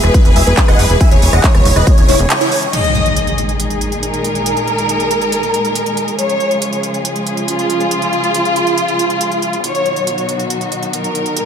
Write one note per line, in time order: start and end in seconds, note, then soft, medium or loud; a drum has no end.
0.00 0.10 E1 medium
0.00 0.99 B2 medium
0.00 2.70 E3 medium
0.00 2.69 G#3 medium
0.00 2.70 E4 medium
0.00 2.69 G#4 medium
0.00 0.13 B4 medium
0.00 cross-stick medium
0.00 closed hi-hat soft
0.14 0.24 B4 medium
0.14 kick loud
0.14 closed hi-hat medium
0.25 0.32 E1 medium
0.25 0.34 B4 medium
0.25 closed hi-hat soft
0.36 0.43 E1 loud
0.36 0.45 E5 medium
0.36 0.45 G#5 loud
0.36 open hi-hat loud
0.47 0.53 E1 medium
0.47 0.56 B4 medium
0.47 closed hi-hat soft
0.57 0.67 B4 medium
0.57 kick loud
0.57 clap loud
0.57 closed hi-hat medium
0.68 0.75 E1 medium
0.68 0.78 D#5 medium
0.68 0.78 F#5 loud
0.68 cross-stick medium
0.68 closed hi-hat soft
0.79 0.86 F#1 loud
0.79 0.88 B4 medium
0.79 open hi-hat loud
0.90 0.96 E1 medium
0.90 0.99 B4 medium
0.90 closed hi-hat soft
1.01 2.72 C#3 medium
1.01 1.10 E5 medium
1.01 1.10 G#5 medium
1.01 kick loud
1.01 closed hi-hat medium
1.11 1.18 E1 medium
1.11 1.21 C#5 medium
1.11 closed hi-hat soft
1.22 1.29 E1 loud
1.22 1.32 C#5 medium
1.22 open hi-hat loud
1.33 1.40 E1 loud
1.33 1.42 D#5 medium
1.33 1.42 F#5 loud
1.33 cross-stick medium
1.33 closed hi-hat soft
1.44 1.53 C#5 medium
1.44 kick loud
1.44 clap loud
1.44 closed hi-hat medium
1.55 1.61 E1 medium
1.55 1.64 C#5 medium
1.55 cross-stick medium
1.55 closed hi-hat soft
1.65 1.72 E1 loud
1.65 1.75 C#5 medium
1.65 open hi-hat loud
1.76 1.83 E1 medium
1.76 1.85 B4 medium
1.76 1.85 D#5 medium
1.76 cross-stick medium
1.76 closed hi-hat soft
1.87 1.96 C#5 medium
1.87 kick loud
1.87 closed hi-hat medium
1.98 2.04 E1 medium
1.98 2.07 C#5 medium
1.98 closed hi-hat soft
2.08 2.15 E1 loud
2.08 2.18 E4 medium
2.08 2.18 C#5 loud
2.08 open hi-hat loud
2.19 2.26 E1 medium
2.19 2.29 C#5 medium
2.19 closed hi-hat soft
2.30 2.39 C#5 medium
2.30 clap loud
2.30 closed hi-hat medium
2.41 2.50 E4 medium
2.41 2.50 C#5 loud
2.41 closed hi-hat soft
2.52 2.61 C#5 medium
2.52 open hi-hat medium
2.62 2.72 C#5 medium
2.62 closed hi-hat soft
2.73 6.15 A#2 medium
2.73 6.15 D#3 medium
2.73 9.60 G#3 medium
2.73 6.15 D#4 medium
2.73 6.15 G#4 medium
2.73 3.29 D#5 medium
2.73 closed hi-hat medium
2.73 crash medium
2.73 impact medium
2.84 closed hi-hat soft
2.95 closed hi-hat soft
3.06 closed hi-hat soft
3.16 closed hi-hat medium
3.27 closed hi-hat soft
3.38 closed hi-hat medium
3.49 closed hi-hat soft
3.60 closed hi-hat medium
3.70 closed hi-hat soft
3.81 closed hi-hat medium
3.92 closed hi-hat soft
4.03 6.10 A#4 medium
4.03 closed hi-hat medium
4.14 closed hi-hat soft
4.24 closed hi-hat medium
4.35 closed hi-hat soft
4.46 closed hi-hat medium
4.57 closed hi-hat soft
4.68 closed hi-hat soft
4.78 closed hi-hat soft
4.89 closed hi-hat medium
5.00 closed hi-hat soft
5.11 closed hi-hat medium
5.21 closed hi-hat soft
5.32 closed hi-hat medium
5.43 closed hi-hat soft
5.54 closed hi-hat medium
5.65 closed hi-hat soft
5.75 closed hi-hat medium
5.86 closed hi-hat soft
5.97 closed hi-hat medium
6.08 closed hi-hat soft
6.19 9.61 C#3 medium
6.19 9.60 F3 medium
6.19 9.60 F4 medium
6.19 9.61 G#4 medium
6.19 6.75 C#5 medium
6.19 closed hi-hat medium
6.29 closed hi-hat soft
6.40 closed hi-hat soft
6.51 closed hi-hat soft
6.62 closed hi-hat medium
6.73 closed hi-hat soft
6.83 closed hi-hat medium
6.94 closed hi-hat soft
7.05 closed hi-hat medium
7.16 closed hi-hat soft
7.27 closed hi-hat medium
7.37 closed hi-hat soft
7.48 9.55 F4 medium
7.48 closed hi-hat medium
7.59 closed hi-hat soft
7.70 closed hi-hat medium
7.80 closed hi-hat soft
7.91 closed hi-hat medium
8.02 closed hi-hat soft
8.13 closed hi-hat soft
8.24 closed hi-hat soft
8.34 closed hi-hat medium
8.45 closed hi-hat soft
8.56 closed hi-hat medium
8.67 closed hi-hat soft
8.78 closed hi-hat medium
8.88 closed hi-hat soft
8.99 closed hi-hat medium
9.10 closed hi-hat soft
9.21 closed hi-hat medium
9.32 closed hi-hat soft
9.42 closed hi-hat medium
9.53 closed hi-hat soft
9.64 11.35 B2 medium
9.64 11.45 D#3 medium
9.64 11.35 F#3 medium
9.64 11.45 D#4 medium
9.64 11.35 F#4 medium
9.64 10.20 C#5 medium
9.64 closed hi-hat medium
9.75 closed hi-hat soft
9.86 closed hi-hat soft
9.96 closed hi-hat soft
10.07 closed hi-hat medium
10.18 closed hi-hat soft
10.29 closed hi-hat medium
10.39 closed hi-hat soft
10.50 closed hi-hat medium
10.61 closed hi-hat soft
10.72 closed hi-hat medium
10.83 closed hi-hat soft
10.93 11.45 A#4 medium
10.93 closed hi-hat medium
11.04 closed hi-hat soft
11.15 closed hi-hat medium
11.26 closed hi-hat soft
11.37 11.45 A#2 medium
11.37 11.45 G#3 medium
11.37 11.45 G#4 medium
11.37 closed hi-hat medium